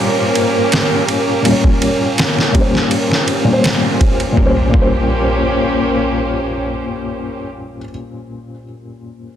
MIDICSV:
0, 0, Header, 1, 6, 480
1, 0, Start_track
1, 0, Tempo, 731707
1, 951, Time_signature, 4, 2, 24, 8
1, 6143, End_track
2, 0, Start_track
2, 0, Title_t, "Synth drone"
2, 0, Program_c, 0, 95
2, 0, Note_on_c, 0, 70, 87
2, 2880, Note_off_c, 0, 70, 0
2, 6143, End_track
3, 0, Start_track
3, 0, Title_t, "Violin section"
3, 0, Program_c, 1, 48
3, 0, Note_on_c, 1, 58, 80
3, 0, Note_on_c, 1, 61, 88
3, 0, Note_on_c, 1, 67, 74
3, 0, Note_on_c, 1, 70, 69
3, 2847, Note_off_c, 1, 58, 0
3, 2848, Note_off_c, 1, 61, 0
3, 2848, Note_off_c, 1, 67, 0
3, 2848, Note_off_c, 1, 70, 0
3, 2870, Note_on_c, 1, 67, 69
3, 2871, Note_on_c, 1, 61, 78
3, 2871, Note_on_c, 1, 72, 65
3, 2873, Note_on_c, 1, 58, 71
3, 4888, Note_off_c, 1, 67, 0
3, 4889, Note_off_c, 1, 61, 0
3, 4889, Note_off_c, 1, 72, 0
3, 4891, Note_off_c, 1, 58, 0
3, 6143, End_track
4, 0, Start_track
4, 0, Title_t, "Felt piano"
4, 0, Program_c, 2, 0
4, 0, Control_c, 2, 64, 127
4, 0, Note_on_c, 2, 46, 77
4, 0, Note_on_c, 2, 55, 80
4, 0, Note_on_c, 2, 61, 75
4, 0, Note_on_c, 2, 72, 93
4, 913, Note_off_c, 2, 46, 0
4, 923, Note_off_c, 2, 55, 0
4, 930, Note_on_c, 2, 46, 67
4, 933, Note_off_c, 2, 61, 0
4, 942, Note_off_c, 2, 72, 0
4, 951, Note_on_c, 2, 55, 63
4, 969, Note_on_c, 2, 61, 60
4, 989, Note_on_c, 2, 73, 77
4, 1633, Note_off_c, 2, 46, 0
4, 1643, Note_off_c, 2, 55, 0
4, 1652, Note_off_c, 2, 61, 0
4, 1652, Note_on_c, 2, 46, 67
4, 1662, Note_off_c, 2, 73, 0
4, 1670, Note_on_c, 2, 55, 63
4, 1690, Note_on_c, 2, 61, 64
4, 1710, Note_on_c, 2, 72, 74
4, 2241, Note_off_c, 2, 46, 0
4, 2251, Note_off_c, 2, 55, 0
4, 2258, Note_on_c, 2, 46, 79
4, 2261, Note_off_c, 2, 61, 0
4, 2271, Note_off_c, 2, 72, 0
4, 2276, Note_on_c, 2, 55, 74
4, 2297, Note_on_c, 2, 61, 71
4, 2316, Note_on_c, 2, 72, 92
4, 2824, Note_off_c, 2, 46, 0
4, 2834, Note_on_c, 2, 46, 71
4, 2843, Note_off_c, 2, 55, 0
4, 2853, Note_off_c, 2, 61, 0
4, 2863, Note_off_c, 2, 72, 0
4, 2864, Note_on_c, 2, 55, 68
4, 2878, Control_c, 2, 64, 0
4, 2894, Note_on_c, 2, 61, 66
4, 2923, Note_on_c, 2, 72, 81
4, 2973, Control_c, 2, 64, 127
4, 2989, Note_off_c, 2, 46, 0
4, 3005, Note_off_c, 2, 55, 0
4, 3021, Note_off_c, 2, 61, 0
4, 3037, Note_off_c, 2, 72, 0
4, 3073, Note_on_c, 2, 46, 70
4, 3103, Note_on_c, 2, 55, 62
4, 3131, Note_on_c, 2, 61, 62
4, 3160, Note_on_c, 2, 72, 79
4, 5091, Note_off_c, 2, 46, 0
4, 5121, Note_off_c, 2, 55, 0
4, 5149, Note_off_c, 2, 61, 0
4, 5178, Note_off_c, 2, 72, 0
4, 6143, End_track
5, 0, Start_track
5, 0, Title_t, "Impact"
5, 0, Program_c, 3, 103
5, 2869, Note_on_c, 3, 60, 59
5, 4913, Note_off_c, 3, 60, 0
5, 6143, End_track
6, 0, Start_track
6, 0, Title_t, "Drums"
6, 232, Note_on_c, 9, 51, 62
6, 298, Note_off_c, 9, 51, 0
6, 473, Note_on_c, 9, 51, 82
6, 482, Note_on_c, 9, 38, 107
6, 539, Note_off_c, 9, 51, 0
6, 547, Note_off_c, 9, 38, 0
6, 712, Note_on_c, 9, 51, 61
6, 777, Note_off_c, 9, 51, 0
6, 952, Note_on_c, 9, 51, 76
6, 1017, Note_off_c, 9, 51, 0
6, 1077, Note_on_c, 9, 36, 84
6, 1142, Note_off_c, 9, 36, 0
6, 1193, Note_on_c, 9, 51, 62
6, 1258, Note_off_c, 9, 51, 0
6, 1431, Note_on_c, 9, 51, 73
6, 1439, Note_on_c, 9, 38, 102
6, 1496, Note_off_c, 9, 51, 0
6, 1505, Note_off_c, 9, 38, 0
6, 1565, Note_on_c, 9, 38, 42
6, 1631, Note_off_c, 9, 38, 0
6, 1670, Note_on_c, 9, 36, 86
6, 1671, Note_on_c, 9, 51, 60
6, 1736, Note_off_c, 9, 36, 0
6, 1736, Note_off_c, 9, 51, 0
6, 1804, Note_on_c, 9, 38, 36
6, 1870, Note_off_c, 9, 38, 0
6, 1909, Note_on_c, 9, 51, 74
6, 1974, Note_off_c, 9, 51, 0
6, 2044, Note_on_c, 9, 38, 42
6, 2110, Note_off_c, 9, 38, 0
6, 2150, Note_on_c, 9, 51, 61
6, 2215, Note_off_c, 9, 51, 0
6, 2389, Note_on_c, 9, 51, 80
6, 2397, Note_on_c, 9, 38, 109
6, 2454, Note_off_c, 9, 51, 0
6, 2463, Note_off_c, 9, 38, 0
6, 2629, Note_on_c, 9, 36, 84
6, 2629, Note_on_c, 9, 51, 58
6, 2695, Note_off_c, 9, 36, 0
6, 2695, Note_off_c, 9, 51, 0
6, 2755, Note_on_c, 9, 51, 36
6, 2821, Note_off_c, 9, 51, 0
6, 2868, Note_on_c, 9, 36, 87
6, 2934, Note_off_c, 9, 36, 0
6, 3109, Note_on_c, 9, 36, 97
6, 3174, Note_off_c, 9, 36, 0
6, 6143, End_track
0, 0, End_of_file